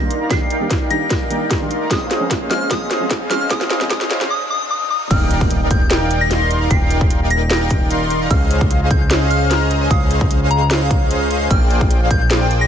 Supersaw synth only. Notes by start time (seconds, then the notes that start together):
Already playing: D#4 A#4 D5 F5 C6
0.21 D#4 A#4 D5 F5 A#5
0.30 D#4 A#4 D5 F5 G5
0.50 D#4 A#4 D5 F5 G5
0.81 D#4 A#4 D5 F5 G5
1.21 D#4 A#4 D5 F5 G5
1.50 D#4 A#4 D5 F5 C6
1.81 D#4 A#4 D5 F5 A#5
1.91 C#4 G#4 C5 D#5 F5
2.11 C#4 G#4 C5 D#5 F5
2.41 C#4 G#4 C5 D#5 F5
2.71 C#4 G#4 C5 D#5 F5
2.91 C#4 G#4 C5 D#5 F5
3.21 C#4 G#4 C5 D#5 F5
3.51 C#4 G#4 C5 D#5 F5
3.70 C#4 G#4 C5 D#5 F5
3.91 C#4 G#4 C5 D#5 F5
4.11 C#4 G#4 C5 D#5 F5
5.11 D#4 A#4 D5 F5 G5
5.31 D#4 A#4 D5 F5 G5
5.61 D#4 A#4 D5 F5 G5
6.01 D#4 A#4 D5 F5 G5
6.30 D#4 A#4 D5 F5 C6
6.61 D#4 A#4 D5 F5 A#5
6.70 D#4 A#4 D5 F5 G5
6.90 D#4 A#4 D5 F5 G5
7.21 D#4 A#4 D5 F5 G5
7.61 D#4 A#4 D5 F5 G5
7.90 D#4 A#4 D5 F5 C6
8.21 D#4 A#4 D5 F5 A#5
8.30 C#4 G#4 C5 D#5 F5
8.51 C#4 G#4 C5 D#5 F5
8.81 C#4 G#4 C5 D#5 F5
9.21 C#4 G#4 C5 D#5 F5
9.50 C#4 G#4 C5 D#5 A#5
9.81 C#4 G#4 C5 D#5 G#5
9.90 C#4 G#4 C5 D#5 F5
10.10 C#4 G#4 C5 D#5 F5
10.41 C#4 G#4 C5 D#5 F5
10.81 C#4 G#4 C5 D#5 F5
11.10 C#4 G#4 C5 D#5 F5
11.30 C#4 G#4 C5 D#5 F5
11.50 A#3 G#4 C5 D5 G5
11.70 A#3 G#4 C5 D5 G5
12.01 A#3 G#4 C5 D5 F5
12.41 A#3 G#4 C5 D5 G5